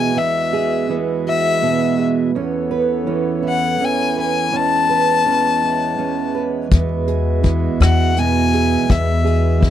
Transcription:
Already playing: steel-string acoustic guitar E2 B2 E3 B3 F#4 G#4, harmonium G#3 F#4 E5, violin G#5
0.15 steel-string acoustic guitar E2 B3, violin E5
0.53 steel-string acoustic guitar G#4
0.89 steel-string acoustic guitar E3 B3
1.27 steel-string acoustic guitar F#4, violin E5
1.62 steel-string acoustic guitar B2 B3
1.98 steel-string acoustic guitar G#4
2.35 steel-string acoustic guitar E2 C#4, harmonium E3 B3 A4 C#5
2.71 steel-string acoustic guitar B4
3.07 steel-string acoustic guitar E3 C#4
3.43 steel-string acoustic guitar E4
3.48 violin F#5
3.80 steel-string acoustic guitar E2 C#4
3.85 violin G#5
4.17 steel-string acoustic guitar B4, violin G#5
4.53 steel-string acoustic guitar E2 C#4, harmonium G#3, violin A5
4.90 steel-string acoustic guitar B4
5.26 steel-string acoustic guitar E3 C#4
5.63 steel-string acoustic guitar E4
5.98 steel-string acoustic guitar E2 C#4
6.35 steel-string acoustic guitar B4
6.71 steel-string acoustic guitar E2 B3, upright bass E2, harmonium G#3 F#4 E5, kick, closed hi-hat
7.07 steel-string acoustic guitar G#4, closed hi-hat
7.43 steel-string acoustic guitar E3 B3, kick, closed hi-hat
7.80 upright bass E2, steel-string acoustic guitar F#4, violin F#5, cross-stick, closed hi-hat
8.16 steel-string acoustic guitar B2 B3, violin G#5, closed hi-hat
8.53 steel-string acoustic guitar G#4, closed hi-hat
8.89 steel-string acoustic guitar E2 B3, upright bass E2, violin E5, kick, closed hi-hat
9.25 steel-string acoustic guitar G#4, closed hi-hat
9.60 steel-string acoustic guitar E3 B3, kick, closed hi-hat

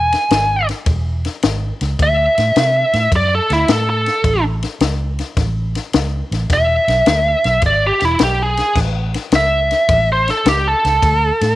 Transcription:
Already playing: fingered electric bass E1, lead electric guitar G#5
0.12 snare, ride
0.30 fingered electric bass G#1, snare, ride
0.69 snare, ride
0.86 fingered electric bass E1, kick, ride
1.25 snare, ride
1.43 fingered electric bass G#1, snare, ride
1.81 fingered electric bass C#2, snare, ride
1.99 fingered electric bass D2, lead electric guitar E5, kick, ride
2.38 fingered electric bass A2, snare, ride
2.56 fingered electric bass C3, snare, ride
2.93 fingered electric bass A2, snare, ride
3.12 fingered electric bass F#2, kick, ride
3.16 lead electric guitar D5
3.35 lead electric guitar A4
3.50 fingered electric bass D2, lead electric guitar E4, snare, ride
3.68 fingered electric bass A2, lead electric guitar A4, snare, ride
3.90 lead electric guitar A4
4.06 snare, ride
4.24 fingered electric bass A1, kick, ride
4.62 snare, ride
4.80 fingered electric bass C#2, snare, ride
5.19 snare, ride
5.37 fingered electric bass A1, kick, snare, ride
5.75 snare, ride
5.93 fingered electric bass C#2, snare, ride
6.31 fingered electric bass A1, snare, ride
6.50 fingered electric bass E1, lead electric guitar E5, kick, snare, ride
6.88 fingered electric bass B1, snare, ride
7.06 fingered electric bass D2, snare, ride
7.44 fingered electric bass B1, snare, ride
7.62 fingered electric bass G#1, kick, ride
7.66 lead electric guitar D5
7.87 lead electric guitar G4
8.00 fingered electric bass E1, snare, ride
8.05 lead electric guitar E4
8.19 fingered electric bass B1, snare, ride
8.23 lead electric guitar G4
8.43 lead electric guitar G#4
8.57 snare, ride
8.75 fingered electric bass A1, kick, snare, crash
9.14 snare, ride
9.32 fingered electric bass C#2, snare, ride
9.36 lead electric guitar E5
9.71 snare, ride
9.89 fingered electric bass A1, kick, ride
10.12 lead electric guitar C5
10.28 lead electric guitar A4, snare, ride
10.46 fingered electric bass C#2, lead electric guitar G4, snare, ride
10.68 lead electric guitar A4
10.85 fingered electric bass C#2, snare, ride
11.03 fingered electric bass D2, kick, ride
11.41 fingered electric bass A2, snare, ride

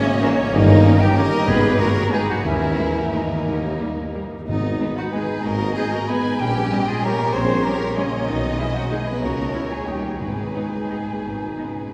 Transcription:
Already playing: french horn section C#3, clarinet A#3, violin section C#4 D#5, flute C#5
0.22 french horn section A#2, clarinet E3, viola section A#3 C#4, violin section A#3 C#5, flute A#4
0.37 french horn section C#3, clarinet A#3, violin section C#4, flute C#5
0.52 double bass section G1, tuba G1, cello section G2, french horn section D#3, clarinet A#3, violin section D#4 A#4, flute D#5
0.85 viola section A#3 C#4
1.00 french horn section G3, clarinet D#4, violin section G4, flute G5
1.16 viola section A#3 C#4, french horn section A#3, clarinet G4, violin section A#4 D#5, flute A#5
1.46 double bass section G#1, tuba G#1, cello section G#2, timpani G#2, french horn section B3, clarinet G#4, violin section B4, flute B5
1.77 viola section G#3 B3, french horn section A#3, clarinet F#4, violin section A#4 C#5, flute A#5
2.10 french horn section G#3, viola section G#3 B3, clarinet D#4, violin section G#4 B4, flute G#5
2.28 french horn section F#3, clarinet D#4, violin section F#4, flute F#5
2.43 double bass section D#2, tuba D#2, cello section D#2, timpani D#3, french horn section E3, clarinet C#4, violin section E4 A#4, flute E5
2.78 viola section G#3 A#3
3.13 french horn section D#3, viola section G#3 A#3, clarinet A#3, violin section D#4, flute D#5
3.47 tuba D#2, double bass section D#2, cello section D#2, timpani D#3
3.81 viola section G3 A#3
4.14 viola section G3 A#3
4.47 double bass section G#1, tuba G#1, cello section G#2, timpani G#2, french horn section D#3, clarinet B3, violin section D#4, flute D#5
4.80 viola section G#3 B3, violin section B4
4.95 french horn section F#3, clarinet D#4, violin section F#4, flute F#5
5.13 french horn section G#3, viola section G#3 B3, clarinet D#4, violin section G#4, flute G#5
5.43 double bass section G#1, tuba G#1, cello section G#2, french horn section A#3, clarinet F#4, violin section A#4 D#5, flute A#5
5.75 viola section G#3 B3, clarinet D#4, violin section G#4, flute G#5
5.79 french horn section G#3
5.92 french horn section A#3, clarinet F#4, violin section A#4, flute A#5
6.08 viola section G#3 B3, french horn section B3, clarinet G#4, violin section B4 G#5, flute B5
6.39 double bass section A#1, tuba A#1, cello section A#2, french horn section G3, clarinet C#4, violin section G4 G5, flute G5
6.71 viola section G3 C#4, violin section D#5
6.87 french horn section G#3, clarinet F4, violin section G#4, flute G#5
7.04 viola section G3 C#4, french horn section A#3, clarinet G4, violin section A#4 C#5, flute A#5
7.34 double bass section A#1, tuba A#1, cello section A#2, french horn section C4, clarinet G#4, violin section C5, flute C6
7.64 viola section G3 C#4, french horn section A#3, clarinet G4, violin section A#4 C#5, flute A#5
7.97 french horn section C#3, viola section G3 C#4, clarinet A#3, violin section C#4 D#5, flute C#5
8.27 tuba B1, double bass section B1, cello section B2, french horn section D#3, clarinet B3, violin section D#4, flute D#5
8.58 french horn section E3, viola section G#3 D#4, clarinet C#4, violin section E4, flute E5
8.74 french horn section F#3, clarinet D#4, violin section F#4, flute F#5
8.90 viola section G#3 D#4, clarinet D#4, violin section G#4, flute G#5
8.94 french horn section G#3
9.06 french horn section B3, clarinet G#4, violin section B4, flute B5
9.21 double bass section C#2, tuba C#2, cello section C#3, french horn section A#3, clarinet F#4, violin section A#4 C#5, flute A#5
9.53 viola section C#4 E4
9.70 french horn section G#3, clarinet E4, violin section G#4, flute G#5
9.87 double bass section D#2, tuba D#2, cello section D#3, french horn section G3, viola section A#3 D#4, clarinet D#4, violin section G4, flute G5
10.20 double bass section G#1, tuba G#1, cello section G#2, timpani G#2, french horn section G#3, clarinet D#4, violin section G#4 B4, flute G#5
10.54 cello section G#2, viola section B3 D#4
10.90 viola section B3 D#4
11.08 cello section A#2
11.24 double bass section G#1, tuba G#1, cello section B2
11.58 cello section C#3, viola section B3 D#4

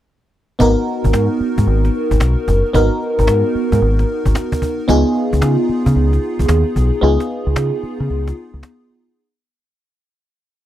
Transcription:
0.59 fingered electric bass G#1, fm electric piano B3 D#4 F#4 A#4, cajon bass
0.87 cajon slap
1.04 fingered electric bass G#1, cajon bass
1.13 fingered electric bass G#2, cajon slap
1.40 muted fingered electric bass stroke, cajon slap
1.58 fingered electric bass G#2, cajon bass
1.67 fingered electric bass G#1, cajon slap
1.85 cajon slap
1.94 cajon slap
2.11 fingered electric bass G#1, cajon bass
2.20 fingered electric bass B1, cajon slap
2.48 fingered electric bass F#1, cajon bass
2.65 cajon slap
2.73 fingered electric bass G#1, fm electric piano B3 D#4 F#4 A#4, cajon bass
3.01 cajon slap
3.19 fingered electric bass G#1, cajon bass
3.27 fingered electric bass G#2, cajon slap
3.55 muted fingered electric bass stroke, cajon slap
3.72 fingered electric bass G#2, cajon bass
3.82 fingered electric bass G#1
3.99 cajon slap
4.09 cajon slap
4.25 fingered electric bass G#1, cajon bass
4.35 cajon slap
4.52 cajon bass
4.62 cajon bass
4.80 cajon slap
4.88 fingered electric bass C#2, fm electric piano B3 D#4 F4 G#4, cajon bass
5.16 cajon slap
5.33 fingered electric bass C#2, cajon bass
5.41 fingered electric bass C#3, cajon slap
5.69 muted fingered electric bass stroke, cajon slap
5.86 fingered electric bass C#3, cajon bass
5.96 fingered electric bass C#2, cajon slap
6.13 cajon slap
6.22 cajon slap
6.39 fingered electric bass C#2, cajon bass
6.48 fingered electric bass D#2, cajon slap
6.76 fingered electric bass B1, cajon bass
6.94 cajon slap
7.01 fingered electric bass C#2, fm electric piano B3 D#4 F4 G#4, cajon slap
7.20 cajon slap
7.47 fingered electric bass C#2, cajon slap
7.56 fingered electric bass C#3, cajon slap
7.83 muted fingered electric bass stroke, cajon slap
8.00 fingered electric bass C#3, cajon slap
8.10 fingered electric bass C#2, cajon slap
8.27 cajon slap
8.37 cajon slap
8.54 fingered electric bass C#2, cajon slap
8.63 cajon slap

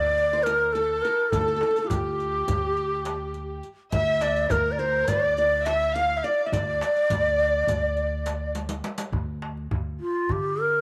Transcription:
Already playing: upright bass D2, qanun A#4 D5 E5, ney D5, violin section D5
0.18 riq
0.33 qanun C5
0.43 ney A#4, violin section A#4, qanun A#4, riq, darbuka tek
0.73 ney A4, violin section A4, qanun A4, riq, darbuka ka
1.02 ney A#4, qanun A#4, riq, darbuka ka
1.30 upright bass D2, ney A4, violin section A4, qanun A4, riq, darbuka dum
1.41 qanun A4
1.48 qanun A4
1.56 qanun A4
1.61 qanun A4, darbuka tek
1.71 qanun A4
1.76 qanun A4, riq
1.82 qanun F4, ney A4
1.87 upright bass D2, ney G4, riq, darbuka dum
1.92 violin section G4, qanun G4
2.20 riq, darbuka ka
2.48 upright bass D2, riq, darbuka dum
2.77 riq
3.05 riq, darbuka tek
3.34 riq, darbuka ka
3.63 riq, darbuka ka
3.92 upright bass D2, ney E5, qanun E5, violin section E5, riq, darbuka dum
4.21 qanun D5, ney D5, riq, darbuka tek
4.36 riq, darbuka ka
4.50 upright bass D2, qanun A#4, violin section A#4, ney A#4, riq, darbuka dum
4.72 ney D5
4.79 ney C5, qanun C5, riq, darbuka ka
5.08 upright bass D2, violin section D5, ney D5, qanun D5, riq, darbuka dum
5.37 ney D5, qanun D5, riq
5.65 ney E5, violin section E5, qanun E5, riq, darbuka tek
5.95 ney F5, violin section F5, qanun F5, riq, darbuka ka
6.17 ney E5
6.24 ney D5, qanun D5, violin section D5, riq, darbuka ka
6.45 ney E5, qanun E5
6.52 upright bass D2, ney D5, violin section D5, qanun D5, riq, darbuka dum
6.81 riq, darbuka tek
6.96 riq, darbuka ka
7.10 upright bass D2, riq, darbuka dum
7.39 riq
7.67 upright bass D2, riq, darbuka dum
7.97 riq
8.26 riq, darbuka tek
8.55 riq, darbuka tek
8.69 riq, darbuka ka
8.84 riq, darbuka tek
8.98 riq, darbuka ka
9.12 upright bass D2, darbuka dum
9.42 darbuka tek
9.57 darbuka ka
9.71 upright bass D2, darbuka dum
10.00 ney F4
10.29 upright bass D3, ney G4, darbuka dum
10.59 ney A#4, darbuka ka

